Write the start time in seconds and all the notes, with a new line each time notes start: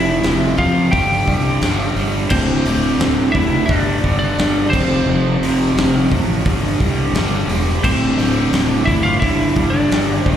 Already playing: F1 F2 C3 F3 E4 E5
0.23 F1 F2 C3 F3, snare, open hi-hat
0.58 F2 C3 F3 F4 F5, kick, open hi-hat
0.92 G1 G2 D3 G3 G4 G5, kick, open hi-hat
1.27 C2 G2 D3 G3, kick, open hi-hat
1.61 G1 G2 D3 G3, snare, open hi-hat
1.96 G1 G2 D3 G3, open hi-hat
2.30 D1 D2 A2 D3 C4 C5, kick, crash
2.65 D1 D2 A2 D3, open hi-hat
2.99 D1 D2 A2 D3, snare, open hi-hat
3.32 F1 D2 A2 E4 E5, kick, open hi-hat
3.37 D3
3.66 G1 D5, kick, open hi-hat
3.70 G2 D3 G3 D4
4.04 G1 G2 D3 G3, kick, open hi-hat
4.19 D5
4.24 D4
4.38 G1 G2 D3 G3, snare, open hi-hat
4.70 F1 F2 C3 F3 C5, kick, crash
4.74 C4
5.06 F1 F2 C3 F3
5.41 F1 F2 C3 F3, open hi-hat
5.76 F1 F2 C3 F3, snare, open hi-hat
6.11 A1 F2 C3 F3, kick, open hi-hat
6.46 G1 G2 D3 G3, kick, open hi-hat
6.80 C2 G2 D3 G3, kick, open hi-hat
7.13 G1 G2 D3 G3, snare, open hi-hat
7.47 E1 G2 D3 G3, open hi-hat
7.82 D1 D2 A2 D3 C4 C5, kick, crash
8.16 D1 D2 A2, open hi-hat
8.20 D3
8.52 D1 D2 A2 D3, snare, open hi-hat
8.85 G1 D2 A2 D3 E4 E5, kick, open hi-hat
9.03 F4 F5
9.20 G1 G2 D3 E4 E5, kick, open hi-hat
9.24 D3 G3
9.56 G1 G2 D3 G3, kick, open hi-hat
9.70 D4 D5
9.91 G1 G2 D3 G3, snare, open hi-hat
10.20 C5
10.26 F1 F2 C3 F3, kick, open hi-hat